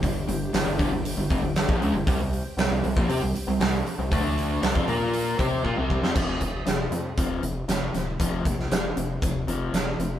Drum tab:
CC |----------------|----------------|----------------|x---------------|
HH |o-o-o-o-o-o-o-o-|o-o-o-o-o-o-o-o-|o-o-o-o-o-o-----|--x-x-x-x-x-x-x-|
SD |----o-------o---|----o-------o---|----o----------o|----o-------o-o-|
BD |o-----o---o--o--|o------o--------|o----o----o-o-o-|o-o-----o-------|

CC |----------------|
HH |x-x-x-x-x-x-x-x-|
SD |---oo-------o---|
BD |o-o-----o-------|